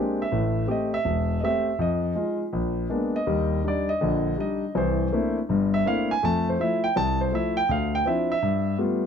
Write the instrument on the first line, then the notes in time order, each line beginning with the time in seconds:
grand piano
Already playing: G#3 A#3 C4 D4 G4
0.22 E5
0.32 A1 A2
0.67 A3 C4 G4 D#5
0.94 E5
1.05 E1
1.40 A3 C4 G4 D#5
1.45 E5
1.79 F2 D#5
2.15 G#3 D#4 F4
2.53 A#1
2.89 G#3 A#3 B3 D4
3.16 D#5
3.27 D#2 G3
3.64 G3 D4 D#4 D5
3.89 D#5
4.01 A#1 D3
4.38 G3 D4 D#4 D#5
4.75 C2 E3 C5
5.12 A3 A#3 C4 D4 E4
5.49 G1 G2
5.74 E5
5.86 A3 A#3 C4 D4 E4 F5
6.11 G#5
6.23 F2 A3 A5
6.49 C5
6.60 F3 A3 E4 E5
6.84 G5
6.96 C2 A5
7.21 C5
7.32 F3 A3 E4 E5
7.57 G5
7.69 D2 F5
7.95 G5
8.06 F3 C4 D4 E4 E5
8.32 E5
8.42 G2
8.78 G3 A3 B3 F4